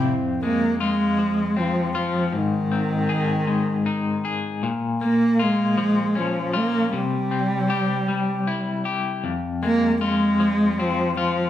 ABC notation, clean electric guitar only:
X:1
M:6/8
L:1/8
Q:3/8=52
K:Fm
V:1 name="Clean electric guitar"
F,, A, F F, C F | A,, C A A, E A | B,, B, F F, D F | C, C G G, =E G |
F,, A, F F, C F |]